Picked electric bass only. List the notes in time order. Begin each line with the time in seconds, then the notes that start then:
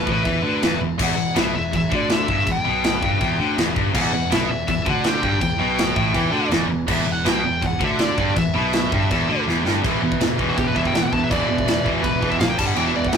0.07 A1
0.25 E2
0.43 D2
0.62 E1
0.81 E1
0.99 E1
1.18 E1
1.36 B1
1.55 E1
1.74 E1
1.91 D2
2.28 G1
2.46 E1
2.67 B1
3.03 G1
3.20 E1
3.40 D2
3.58 E1
3.76 G1
3.94 E1
4.13 E1
4.31 B1
4.50 E1
4.68 E1
4.86 D2
5.22 G1
5.41 E1
5.58 B1
5.96 A1
6.14 E2
6.32 D2
6.49 E1
6.68 E1
6.88 E1
7.07 E1
7.25 B1
7.44 E1
7.63 E1
7.80 D2
8.18 G1
8.37 E1
8.55 B1
8.92 G1
9.11 E1
9.28 D2
9.46 E1
9.64 G1
9.84 E1
10.00 E1
10.19 E1
10.39 E1
10.58 E1
10.76 E1
10.93 E1
11.12 E1
11.31 E1
11.49 E1
11.67 E1
11.86 E1
12.04 E1
12.22 E1
12.40 A#1
12.59 G1
12.77 E1
12.96 E1
13.13 E1